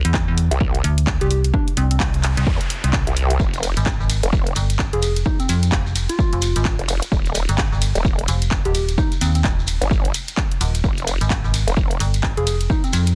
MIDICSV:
0, 0, Header, 1, 7, 480
1, 0, Start_track
1, 0, Tempo, 465116
1, 1586, Time_signature, 4, 2, 24, 8
1, 13571, End_track
2, 0, Start_track
2, 0, Title_t, "Soft synth lead"
2, 0, Program_c, 0, 80
2, 1251, Note_on_c, 0, 67, 94
2, 1312, Note_off_c, 0, 67, 0
2, 1347, Note_on_c, 0, 67, 73
2, 1438, Note_off_c, 0, 67, 0
2, 1588, Note_on_c, 0, 62, 93
2, 1701, Note_off_c, 0, 62, 0
2, 1829, Note_on_c, 0, 60, 89
2, 1919, Note_off_c, 0, 60, 0
2, 1971, Note_on_c, 0, 60, 79
2, 2032, Note_off_c, 0, 60, 0
2, 5089, Note_on_c, 0, 68, 93
2, 5151, Note_off_c, 0, 68, 0
2, 5186, Note_on_c, 0, 68, 73
2, 5278, Note_off_c, 0, 68, 0
2, 5426, Note_on_c, 0, 63, 90
2, 5540, Note_off_c, 0, 63, 0
2, 5570, Note_on_c, 0, 60, 93
2, 5765, Note_off_c, 0, 60, 0
2, 6289, Note_on_c, 0, 65, 104
2, 6952, Note_off_c, 0, 65, 0
2, 8930, Note_on_c, 0, 67, 93
2, 8992, Note_off_c, 0, 67, 0
2, 9028, Note_on_c, 0, 67, 73
2, 9118, Note_off_c, 0, 67, 0
2, 9268, Note_on_c, 0, 63, 91
2, 9381, Note_off_c, 0, 63, 0
2, 9508, Note_on_c, 0, 60, 91
2, 9599, Note_off_c, 0, 60, 0
2, 9651, Note_on_c, 0, 60, 77
2, 9712, Note_off_c, 0, 60, 0
2, 12769, Note_on_c, 0, 68, 95
2, 12831, Note_off_c, 0, 68, 0
2, 12866, Note_on_c, 0, 68, 78
2, 12957, Note_off_c, 0, 68, 0
2, 13108, Note_on_c, 0, 63, 92
2, 13221, Note_off_c, 0, 63, 0
2, 13252, Note_on_c, 0, 60, 96
2, 13446, Note_off_c, 0, 60, 0
2, 13571, End_track
3, 0, Start_track
3, 0, Title_t, "FM bass"
3, 0, Program_c, 1, 39
3, 50, Note_on_c, 1, 40, 96
3, 266, Note_off_c, 1, 40, 0
3, 289, Note_on_c, 1, 40, 96
3, 506, Note_off_c, 1, 40, 0
3, 867, Note_on_c, 1, 38, 100
3, 1227, Note_off_c, 1, 38, 0
3, 1250, Note_on_c, 1, 36, 98
3, 1571, Note_off_c, 1, 36, 0
3, 1827, Note_on_c, 1, 36, 93
3, 2051, Note_off_c, 1, 36, 0
3, 2066, Note_on_c, 1, 36, 99
3, 2426, Note_off_c, 1, 36, 0
3, 2449, Note_on_c, 1, 36, 106
3, 2531, Note_off_c, 1, 36, 0
3, 2929, Note_on_c, 1, 36, 97
3, 3146, Note_off_c, 1, 36, 0
3, 3890, Note_on_c, 1, 32, 101
3, 4106, Note_off_c, 1, 32, 0
3, 4130, Note_on_c, 1, 32, 96
3, 4347, Note_off_c, 1, 32, 0
3, 4707, Note_on_c, 1, 31, 93
3, 5067, Note_off_c, 1, 31, 0
3, 5091, Note_on_c, 1, 29, 95
3, 5412, Note_off_c, 1, 29, 0
3, 5667, Note_on_c, 1, 41, 97
3, 5891, Note_off_c, 1, 41, 0
3, 5906, Note_on_c, 1, 29, 96
3, 6266, Note_off_c, 1, 29, 0
3, 6529, Note_on_c, 1, 29, 92
3, 6746, Note_off_c, 1, 29, 0
3, 6771, Note_on_c, 1, 32, 99
3, 6987, Note_off_c, 1, 32, 0
3, 7729, Note_on_c, 1, 31, 101
3, 7946, Note_off_c, 1, 31, 0
3, 7969, Note_on_c, 1, 31, 99
3, 8186, Note_off_c, 1, 31, 0
3, 8547, Note_on_c, 1, 29, 103
3, 8906, Note_off_c, 1, 29, 0
3, 8930, Note_on_c, 1, 27, 101
3, 9251, Note_off_c, 1, 27, 0
3, 9508, Note_on_c, 1, 39, 97
3, 9732, Note_off_c, 1, 39, 0
3, 9746, Note_on_c, 1, 27, 93
3, 10106, Note_off_c, 1, 27, 0
3, 10947, Note_on_c, 1, 27, 101
3, 11171, Note_off_c, 1, 27, 0
3, 11569, Note_on_c, 1, 32, 98
3, 11786, Note_off_c, 1, 32, 0
3, 11809, Note_on_c, 1, 32, 99
3, 12026, Note_off_c, 1, 32, 0
3, 12386, Note_on_c, 1, 31, 102
3, 12746, Note_off_c, 1, 31, 0
3, 12769, Note_on_c, 1, 29, 99
3, 13091, Note_off_c, 1, 29, 0
3, 13346, Note_on_c, 1, 41, 95
3, 13570, Note_off_c, 1, 41, 0
3, 13571, End_track
4, 0, Start_track
4, 0, Title_t, "Wobble bass"
4, 0, Program_c, 2, 39
4, 528, Note_on_c, 2, 36, 101
4, 850, Note_off_c, 2, 36, 0
4, 2546, Note_on_c, 2, 40, 98
4, 2666, Note_off_c, 2, 40, 0
4, 3169, Note_on_c, 2, 36, 91
4, 3491, Note_off_c, 2, 36, 0
4, 3506, Note_on_c, 2, 29, 98
4, 3866, Note_off_c, 2, 29, 0
4, 4369, Note_on_c, 2, 29, 97
4, 4691, Note_off_c, 2, 29, 0
4, 7008, Note_on_c, 2, 29, 91
4, 7226, Note_off_c, 2, 29, 0
4, 7345, Note_on_c, 2, 27, 96
4, 7705, Note_off_c, 2, 27, 0
4, 8207, Note_on_c, 2, 27, 94
4, 8530, Note_off_c, 2, 27, 0
4, 10128, Note_on_c, 2, 31, 99
4, 10450, Note_off_c, 2, 31, 0
4, 11186, Note_on_c, 2, 29, 95
4, 11546, Note_off_c, 2, 29, 0
4, 12048, Note_on_c, 2, 29, 101
4, 12370, Note_off_c, 2, 29, 0
4, 13571, End_track
5, 0, Start_track
5, 0, Title_t, "Noise sweep"
5, 0, Program_c, 3, 103
5, 1586, Note_on_c, 3, 60, 63
5, 3506, Note_off_c, 3, 60, 0
5, 13571, End_track
6, 0, Start_track
6, 0, Title_t, "Shekere"
6, 3507, Note_on_c, 9, 82, 58
6, 3610, Note_off_c, 9, 82, 0
6, 3648, Note_on_c, 9, 82, 35
6, 3748, Note_off_c, 9, 82, 0
6, 3748, Note_on_c, 9, 82, 102
6, 3851, Note_off_c, 9, 82, 0
6, 3890, Note_on_c, 9, 82, 36
6, 3984, Note_off_c, 9, 82, 0
6, 3984, Note_on_c, 9, 82, 55
6, 4087, Note_off_c, 9, 82, 0
6, 4132, Note_on_c, 9, 82, 39
6, 4230, Note_off_c, 9, 82, 0
6, 4230, Note_on_c, 9, 82, 96
6, 4333, Note_off_c, 9, 82, 0
6, 4366, Note_on_c, 9, 82, 43
6, 4469, Note_off_c, 9, 82, 0
6, 4471, Note_on_c, 9, 82, 57
6, 4574, Note_off_c, 9, 82, 0
6, 4704, Note_on_c, 9, 82, 89
6, 4807, Note_off_c, 9, 82, 0
6, 4854, Note_on_c, 9, 82, 43
6, 4957, Note_off_c, 9, 82, 0
6, 5185, Note_on_c, 9, 82, 96
6, 5289, Note_off_c, 9, 82, 0
6, 5328, Note_on_c, 9, 82, 41
6, 5421, Note_off_c, 9, 82, 0
6, 5421, Note_on_c, 9, 82, 55
6, 5524, Note_off_c, 9, 82, 0
6, 5568, Note_on_c, 9, 82, 36
6, 5666, Note_off_c, 9, 82, 0
6, 5666, Note_on_c, 9, 82, 98
6, 5769, Note_off_c, 9, 82, 0
6, 5812, Note_on_c, 9, 82, 37
6, 5902, Note_off_c, 9, 82, 0
6, 5902, Note_on_c, 9, 82, 54
6, 6005, Note_off_c, 9, 82, 0
6, 6051, Note_on_c, 9, 82, 43
6, 6149, Note_off_c, 9, 82, 0
6, 6149, Note_on_c, 9, 82, 97
6, 6252, Note_off_c, 9, 82, 0
6, 6286, Note_on_c, 9, 82, 42
6, 6389, Note_off_c, 9, 82, 0
6, 6390, Note_on_c, 9, 82, 57
6, 6493, Note_off_c, 9, 82, 0
6, 6623, Note_on_c, 9, 82, 88
6, 6726, Note_off_c, 9, 82, 0
6, 6775, Note_on_c, 9, 82, 43
6, 6868, Note_off_c, 9, 82, 0
6, 6868, Note_on_c, 9, 82, 58
6, 6971, Note_off_c, 9, 82, 0
6, 7104, Note_on_c, 9, 82, 91
6, 7208, Note_off_c, 9, 82, 0
6, 7249, Note_on_c, 9, 82, 41
6, 7350, Note_off_c, 9, 82, 0
6, 7350, Note_on_c, 9, 82, 58
6, 7453, Note_off_c, 9, 82, 0
6, 7482, Note_on_c, 9, 82, 38
6, 7585, Note_off_c, 9, 82, 0
6, 7585, Note_on_c, 9, 82, 106
6, 7688, Note_off_c, 9, 82, 0
6, 7726, Note_on_c, 9, 82, 41
6, 7829, Note_off_c, 9, 82, 0
6, 7829, Note_on_c, 9, 82, 57
6, 7932, Note_off_c, 9, 82, 0
6, 7974, Note_on_c, 9, 82, 36
6, 8066, Note_off_c, 9, 82, 0
6, 8066, Note_on_c, 9, 82, 91
6, 8170, Note_off_c, 9, 82, 0
6, 8210, Note_on_c, 9, 82, 39
6, 8310, Note_off_c, 9, 82, 0
6, 8310, Note_on_c, 9, 82, 58
6, 8413, Note_off_c, 9, 82, 0
6, 8543, Note_on_c, 9, 82, 94
6, 8647, Note_off_c, 9, 82, 0
6, 8686, Note_on_c, 9, 82, 41
6, 8787, Note_off_c, 9, 82, 0
6, 8787, Note_on_c, 9, 82, 63
6, 8890, Note_off_c, 9, 82, 0
6, 9028, Note_on_c, 9, 82, 95
6, 9131, Note_off_c, 9, 82, 0
6, 9171, Note_on_c, 9, 82, 45
6, 9267, Note_off_c, 9, 82, 0
6, 9267, Note_on_c, 9, 82, 58
6, 9370, Note_off_c, 9, 82, 0
6, 9409, Note_on_c, 9, 82, 38
6, 9510, Note_off_c, 9, 82, 0
6, 9510, Note_on_c, 9, 82, 93
6, 9613, Note_off_c, 9, 82, 0
6, 9650, Note_on_c, 9, 82, 40
6, 9747, Note_off_c, 9, 82, 0
6, 9747, Note_on_c, 9, 82, 52
6, 9850, Note_off_c, 9, 82, 0
6, 9897, Note_on_c, 9, 82, 38
6, 9982, Note_off_c, 9, 82, 0
6, 9982, Note_on_c, 9, 82, 102
6, 10085, Note_off_c, 9, 82, 0
6, 10131, Note_on_c, 9, 82, 37
6, 10234, Note_off_c, 9, 82, 0
6, 10235, Note_on_c, 9, 82, 58
6, 10338, Note_off_c, 9, 82, 0
6, 10468, Note_on_c, 9, 82, 94
6, 10571, Note_off_c, 9, 82, 0
6, 10606, Note_on_c, 9, 82, 40
6, 10707, Note_off_c, 9, 82, 0
6, 10707, Note_on_c, 9, 82, 55
6, 10811, Note_off_c, 9, 82, 0
6, 10950, Note_on_c, 9, 82, 91
6, 11054, Note_off_c, 9, 82, 0
6, 11086, Note_on_c, 9, 82, 41
6, 11189, Note_off_c, 9, 82, 0
6, 11189, Note_on_c, 9, 82, 53
6, 11293, Note_off_c, 9, 82, 0
6, 11320, Note_on_c, 9, 82, 35
6, 11423, Note_off_c, 9, 82, 0
6, 11431, Note_on_c, 9, 82, 92
6, 11534, Note_off_c, 9, 82, 0
6, 11571, Note_on_c, 9, 82, 36
6, 11674, Note_off_c, 9, 82, 0
6, 11674, Note_on_c, 9, 82, 58
6, 11777, Note_off_c, 9, 82, 0
6, 11808, Note_on_c, 9, 82, 35
6, 11911, Note_off_c, 9, 82, 0
6, 11911, Note_on_c, 9, 82, 94
6, 12014, Note_off_c, 9, 82, 0
6, 12059, Note_on_c, 9, 82, 36
6, 12149, Note_off_c, 9, 82, 0
6, 12149, Note_on_c, 9, 82, 53
6, 12252, Note_off_c, 9, 82, 0
6, 12393, Note_on_c, 9, 82, 82
6, 12497, Note_off_c, 9, 82, 0
6, 12531, Note_on_c, 9, 82, 43
6, 12633, Note_off_c, 9, 82, 0
6, 12633, Note_on_c, 9, 82, 56
6, 12736, Note_off_c, 9, 82, 0
6, 12870, Note_on_c, 9, 82, 98
6, 12974, Note_off_c, 9, 82, 0
6, 13006, Note_on_c, 9, 82, 38
6, 13109, Note_off_c, 9, 82, 0
6, 13112, Note_on_c, 9, 82, 51
6, 13215, Note_off_c, 9, 82, 0
6, 13257, Note_on_c, 9, 82, 32
6, 13345, Note_off_c, 9, 82, 0
6, 13345, Note_on_c, 9, 82, 104
6, 13448, Note_off_c, 9, 82, 0
6, 13480, Note_on_c, 9, 82, 37
6, 13571, Note_off_c, 9, 82, 0
6, 13571, End_track
7, 0, Start_track
7, 0, Title_t, "Drums"
7, 50, Note_on_c, 9, 42, 68
7, 146, Note_on_c, 9, 36, 105
7, 146, Note_on_c, 9, 39, 118
7, 153, Note_off_c, 9, 42, 0
7, 249, Note_off_c, 9, 36, 0
7, 250, Note_off_c, 9, 39, 0
7, 388, Note_on_c, 9, 46, 90
7, 491, Note_off_c, 9, 46, 0
7, 531, Note_on_c, 9, 42, 67
7, 626, Note_on_c, 9, 36, 117
7, 634, Note_off_c, 9, 42, 0
7, 729, Note_off_c, 9, 36, 0
7, 771, Note_on_c, 9, 42, 54
7, 869, Note_on_c, 9, 46, 102
7, 874, Note_off_c, 9, 42, 0
7, 972, Note_off_c, 9, 46, 0
7, 1010, Note_on_c, 9, 42, 69
7, 1106, Note_on_c, 9, 36, 101
7, 1106, Note_on_c, 9, 39, 122
7, 1113, Note_off_c, 9, 42, 0
7, 1209, Note_off_c, 9, 36, 0
7, 1209, Note_off_c, 9, 39, 0
7, 1250, Note_on_c, 9, 42, 55
7, 1348, Note_on_c, 9, 46, 91
7, 1354, Note_off_c, 9, 42, 0
7, 1451, Note_off_c, 9, 46, 0
7, 1491, Note_on_c, 9, 42, 65
7, 1586, Note_on_c, 9, 36, 107
7, 1594, Note_off_c, 9, 42, 0
7, 1689, Note_off_c, 9, 36, 0
7, 1730, Note_on_c, 9, 42, 39
7, 1827, Note_on_c, 9, 46, 94
7, 1834, Note_off_c, 9, 42, 0
7, 1930, Note_off_c, 9, 46, 0
7, 1970, Note_on_c, 9, 42, 69
7, 2065, Note_on_c, 9, 39, 123
7, 2066, Note_on_c, 9, 36, 102
7, 2074, Note_off_c, 9, 42, 0
7, 2168, Note_off_c, 9, 39, 0
7, 2169, Note_off_c, 9, 36, 0
7, 2210, Note_on_c, 9, 42, 39
7, 2306, Note_on_c, 9, 39, 64
7, 2307, Note_on_c, 9, 46, 89
7, 2313, Note_off_c, 9, 42, 0
7, 2409, Note_off_c, 9, 39, 0
7, 2410, Note_off_c, 9, 46, 0
7, 2450, Note_on_c, 9, 42, 66
7, 2546, Note_on_c, 9, 36, 118
7, 2553, Note_off_c, 9, 42, 0
7, 2649, Note_off_c, 9, 36, 0
7, 2691, Note_on_c, 9, 42, 56
7, 2788, Note_on_c, 9, 46, 101
7, 2794, Note_off_c, 9, 42, 0
7, 2891, Note_off_c, 9, 46, 0
7, 2931, Note_on_c, 9, 42, 66
7, 3026, Note_on_c, 9, 36, 99
7, 3026, Note_on_c, 9, 39, 127
7, 3034, Note_off_c, 9, 42, 0
7, 3129, Note_off_c, 9, 36, 0
7, 3129, Note_off_c, 9, 39, 0
7, 3170, Note_on_c, 9, 42, 54
7, 3268, Note_on_c, 9, 46, 94
7, 3274, Note_off_c, 9, 42, 0
7, 3371, Note_off_c, 9, 46, 0
7, 3410, Note_on_c, 9, 42, 68
7, 3506, Note_on_c, 9, 36, 116
7, 3513, Note_off_c, 9, 42, 0
7, 3609, Note_off_c, 9, 36, 0
7, 3650, Note_on_c, 9, 42, 39
7, 3746, Note_on_c, 9, 46, 105
7, 3746, Note_on_c, 9, 51, 76
7, 3753, Note_off_c, 9, 42, 0
7, 3849, Note_off_c, 9, 46, 0
7, 3849, Note_off_c, 9, 51, 0
7, 3889, Note_on_c, 9, 42, 66
7, 3985, Note_on_c, 9, 39, 127
7, 3986, Note_on_c, 9, 36, 103
7, 3993, Note_off_c, 9, 42, 0
7, 4088, Note_off_c, 9, 39, 0
7, 4089, Note_off_c, 9, 36, 0
7, 4227, Note_on_c, 9, 46, 96
7, 4227, Note_on_c, 9, 51, 81
7, 4330, Note_off_c, 9, 46, 0
7, 4330, Note_off_c, 9, 51, 0
7, 4369, Note_on_c, 9, 42, 69
7, 4466, Note_on_c, 9, 36, 127
7, 4472, Note_off_c, 9, 42, 0
7, 4569, Note_off_c, 9, 36, 0
7, 4609, Note_on_c, 9, 42, 56
7, 4707, Note_on_c, 9, 46, 108
7, 4707, Note_on_c, 9, 51, 78
7, 4713, Note_off_c, 9, 42, 0
7, 4810, Note_off_c, 9, 46, 0
7, 4810, Note_off_c, 9, 51, 0
7, 4849, Note_on_c, 9, 42, 68
7, 4944, Note_on_c, 9, 39, 127
7, 4946, Note_on_c, 9, 36, 107
7, 4953, Note_off_c, 9, 42, 0
7, 5047, Note_off_c, 9, 39, 0
7, 5049, Note_off_c, 9, 36, 0
7, 5089, Note_on_c, 9, 42, 53
7, 5187, Note_on_c, 9, 46, 96
7, 5187, Note_on_c, 9, 51, 83
7, 5192, Note_off_c, 9, 42, 0
7, 5290, Note_off_c, 9, 46, 0
7, 5290, Note_off_c, 9, 51, 0
7, 5330, Note_on_c, 9, 42, 71
7, 5426, Note_on_c, 9, 36, 120
7, 5433, Note_off_c, 9, 42, 0
7, 5529, Note_off_c, 9, 36, 0
7, 5569, Note_on_c, 9, 42, 37
7, 5666, Note_on_c, 9, 46, 103
7, 5666, Note_on_c, 9, 51, 69
7, 5673, Note_off_c, 9, 42, 0
7, 5770, Note_off_c, 9, 46, 0
7, 5770, Note_off_c, 9, 51, 0
7, 5809, Note_on_c, 9, 42, 66
7, 5904, Note_on_c, 9, 39, 127
7, 5906, Note_on_c, 9, 36, 109
7, 5912, Note_off_c, 9, 42, 0
7, 6007, Note_off_c, 9, 39, 0
7, 6009, Note_off_c, 9, 36, 0
7, 6146, Note_on_c, 9, 46, 100
7, 6146, Note_on_c, 9, 51, 74
7, 6250, Note_off_c, 9, 46, 0
7, 6250, Note_off_c, 9, 51, 0
7, 6289, Note_on_c, 9, 42, 69
7, 6386, Note_on_c, 9, 36, 126
7, 6392, Note_off_c, 9, 42, 0
7, 6489, Note_off_c, 9, 36, 0
7, 6529, Note_on_c, 9, 42, 53
7, 6626, Note_on_c, 9, 46, 108
7, 6626, Note_on_c, 9, 51, 73
7, 6632, Note_off_c, 9, 42, 0
7, 6729, Note_off_c, 9, 46, 0
7, 6729, Note_off_c, 9, 51, 0
7, 6769, Note_on_c, 9, 42, 66
7, 6865, Note_on_c, 9, 36, 105
7, 6865, Note_on_c, 9, 39, 127
7, 6872, Note_off_c, 9, 42, 0
7, 6968, Note_off_c, 9, 39, 0
7, 6969, Note_off_c, 9, 36, 0
7, 7009, Note_on_c, 9, 42, 52
7, 7106, Note_on_c, 9, 46, 102
7, 7106, Note_on_c, 9, 51, 84
7, 7113, Note_off_c, 9, 42, 0
7, 7210, Note_off_c, 9, 46, 0
7, 7210, Note_off_c, 9, 51, 0
7, 7249, Note_on_c, 9, 42, 67
7, 7345, Note_on_c, 9, 36, 118
7, 7352, Note_off_c, 9, 42, 0
7, 7449, Note_off_c, 9, 36, 0
7, 7489, Note_on_c, 9, 42, 35
7, 7586, Note_on_c, 9, 46, 102
7, 7586, Note_on_c, 9, 51, 74
7, 7593, Note_off_c, 9, 42, 0
7, 7689, Note_off_c, 9, 46, 0
7, 7689, Note_off_c, 9, 51, 0
7, 7729, Note_on_c, 9, 42, 65
7, 7824, Note_on_c, 9, 39, 127
7, 7826, Note_on_c, 9, 36, 109
7, 7832, Note_off_c, 9, 42, 0
7, 7927, Note_off_c, 9, 39, 0
7, 7929, Note_off_c, 9, 36, 0
7, 8067, Note_on_c, 9, 46, 101
7, 8067, Note_on_c, 9, 51, 78
7, 8170, Note_off_c, 9, 46, 0
7, 8170, Note_off_c, 9, 51, 0
7, 8209, Note_on_c, 9, 42, 64
7, 8306, Note_on_c, 9, 36, 127
7, 8312, Note_off_c, 9, 42, 0
7, 8409, Note_off_c, 9, 36, 0
7, 8449, Note_on_c, 9, 42, 50
7, 8547, Note_on_c, 9, 46, 112
7, 8547, Note_on_c, 9, 51, 76
7, 8553, Note_off_c, 9, 42, 0
7, 8650, Note_off_c, 9, 46, 0
7, 8650, Note_off_c, 9, 51, 0
7, 8689, Note_on_c, 9, 42, 65
7, 8785, Note_on_c, 9, 39, 126
7, 8786, Note_on_c, 9, 36, 109
7, 8792, Note_off_c, 9, 42, 0
7, 8888, Note_off_c, 9, 39, 0
7, 8889, Note_off_c, 9, 36, 0
7, 8930, Note_on_c, 9, 42, 49
7, 9027, Note_on_c, 9, 46, 103
7, 9027, Note_on_c, 9, 51, 81
7, 9033, Note_off_c, 9, 42, 0
7, 9130, Note_off_c, 9, 46, 0
7, 9130, Note_off_c, 9, 51, 0
7, 9170, Note_on_c, 9, 42, 64
7, 9266, Note_on_c, 9, 36, 120
7, 9273, Note_off_c, 9, 42, 0
7, 9369, Note_off_c, 9, 36, 0
7, 9410, Note_on_c, 9, 42, 35
7, 9508, Note_on_c, 9, 46, 106
7, 9508, Note_on_c, 9, 51, 72
7, 9513, Note_off_c, 9, 42, 0
7, 9611, Note_off_c, 9, 46, 0
7, 9611, Note_off_c, 9, 51, 0
7, 9651, Note_on_c, 9, 42, 60
7, 9746, Note_on_c, 9, 36, 114
7, 9746, Note_on_c, 9, 39, 125
7, 9754, Note_off_c, 9, 42, 0
7, 9849, Note_off_c, 9, 36, 0
7, 9849, Note_off_c, 9, 39, 0
7, 9988, Note_on_c, 9, 46, 96
7, 9988, Note_on_c, 9, 51, 78
7, 10092, Note_off_c, 9, 46, 0
7, 10092, Note_off_c, 9, 51, 0
7, 10131, Note_on_c, 9, 42, 62
7, 10226, Note_on_c, 9, 36, 127
7, 10234, Note_off_c, 9, 42, 0
7, 10330, Note_off_c, 9, 36, 0
7, 10371, Note_on_c, 9, 42, 52
7, 10468, Note_on_c, 9, 46, 110
7, 10468, Note_on_c, 9, 51, 76
7, 10475, Note_off_c, 9, 42, 0
7, 10572, Note_off_c, 9, 46, 0
7, 10572, Note_off_c, 9, 51, 0
7, 10612, Note_on_c, 9, 42, 63
7, 10706, Note_on_c, 9, 36, 111
7, 10707, Note_on_c, 9, 39, 122
7, 10715, Note_off_c, 9, 42, 0
7, 10810, Note_off_c, 9, 36, 0
7, 10810, Note_off_c, 9, 39, 0
7, 10852, Note_on_c, 9, 42, 51
7, 10949, Note_on_c, 9, 46, 103
7, 10949, Note_on_c, 9, 51, 80
7, 10955, Note_off_c, 9, 42, 0
7, 11052, Note_off_c, 9, 46, 0
7, 11052, Note_off_c, 9, 51, 0
7, 11092, Note_on_c, 9, 42, 63
7, 11186, Note_on_c, 9, 36, 122
7, 11195, Note_off_c, 9, 42, 0
7, 11290, Note_off_c, 9, 36, 0
7, 11331, Note_on_c, 9, 42, 36
7, 11428, Note_on_c, 9, 46, 99
7, 11428, Note_on_c, 9, 51, 78
7, 11434, Note_off_c, 9, 42, 0
7, 11532, Note_off_c, 9, 46, 0
7, 11532, Note_off_c, 9, 51, 0
7, 11571, Note_on_c, 9, 42, 62
7, 11666, Note_on_c, 9, 36, 107
7, 11666, Note_on_c, 9, 39, 116
7, 11674, Note_off_c, 9, 42, 0
7, 11769, Note_off_c, 9, 36, 0
7, 11769, Note_off_c, 9, 39, 0
7, 11908, Note_on_c, 9, 46, 96
7, 11908, Note_on_c, 9, 51, 80
7, 12011, Note_off_c, 9, 46, 0
7, 12011, Note_off_c, 9, 51, 0
7, 12050, Note_on_c, 9, 42, 61
7, 12146, Note_on_c, 9, 36, 121
7, 12154, Note_off_c, 9, 42, 0
7, 12249, Note_off_c, 9, 36, 0
7, 12290, Note_on_c, 9, 42, 49
7, 12387, Note_on_c, 9, 46, 102
7, 12387, Note_on_c, 9, 51, 78
7, 12393, Note_off_c, 9, 42, 0
7, 12490, Note_off_c, 9, 46, 0
7, 12490, Note_off_c, 9, 51, 0
7, 12529, Note_on_c, 9, 42, 62
7, 12625, Note_on_c, 9, 39, 121
7, 12626, Note_on_c, 9, 36, 104
7, 12633, Note_off_c, 9, 42, 0
7, 12728, Note_off_c, 9, 39, 0
7, 12729, Note_off_c, 9, 36, 0
7, 12770, Note_on_c, 9, 42, 50
7, 12867, Note_on_c, 9, 46, 102
7, 12867, Note_on_c, 9, 51, 85
7, 12873, Note_off_c, 9, 42, 0
7, 12971, Note_off_c, 9, 46, 0
7, 12971, Note_off_c, 9, 51, 0
7, 13010, Note_on_c, 9, 42, 64
7, 13105, Note_on_c, 9, 36, 113
7, 13113, Note_off_c, 9, 42, 0
7, 13209, Note_off_c, 9, 36, 0
7, 13250, Note_on_c, 9, 42, 37
7, 13347, Note_on_c, 9, 46, 96
7, 13347, Note_on_c, 9, 51, 75
7, 13353, Note_off_c, 9, 42, 0
7, 13450, Note_off_c, 9, 46, 0
7, 13450, Note_off_c, 9, 51, 0
7, 13489, Note_on_c, 9, 42, 65
7, 13571, Note_off_c, 9, 42, 0
7, 13571, End_track
0, 0, End_of_file